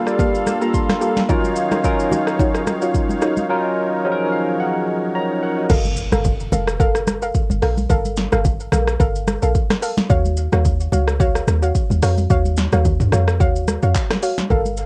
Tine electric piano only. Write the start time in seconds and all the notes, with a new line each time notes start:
Already playing: G3 A#3 D4 F4 G4 A4 F5
0.07 D5
0.20 F5
0.47 A5
0.62 A#5
0.75 C6
1.29 F#3 C#4 D#4 F4 A#4
1.84 F#3 C#4 D#4 F4 A#4
3.49 F#3 C#4 D#4 F4 A#4
4.04 F3 F#3 C#4 D#4 G#4
4.12 A#4
4.32 F5
4.60 F#5
5.15 C#5 A#5
5.43 A#4 F#5
5.58 F#4 D#5